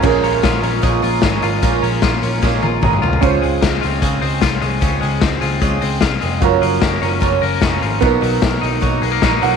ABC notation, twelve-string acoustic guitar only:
X:1
M:4/4
L:1/8
Q:1/4=150
K:Db
V:1 name="Twelve-string acoustic guitar"
[B,,F,A,DFB] [A,DFB] [A,DFB] [A,DFB] [B,,F,A,DFB] [A,DFB] [A,DFB] [A,DFB] | [B,,F,A,DFB] [A,DFB] [A,DFB] [A,DFB] [B,,F,A,DFB] [A,DFB] [A,DFB] [A,DFB] | [D,F,A,CA] [A,CA] [F,A,CA] [A,CA] [D,F,A,CA] [A,CA] [A,CA] [A,CA] | [D,F,A,CA] [A,CA] [F,A,CA] [A,CA] [D,F,A,CA] [A,CA] [F,A,CA] [A,CA] |
[G,,D,F,B,D] [F,B,D] [D,F,B,D] [F,B,D] [G,,D,F,B,D] [F,B,D] [D,F,B,D] [F,B,D] | [_C,G,B,E] [G,B,E] [C,G,B,E] [G,B,E] [C,G,B,E] [G,B,E] [C,G,B,E] [G,B,E] |]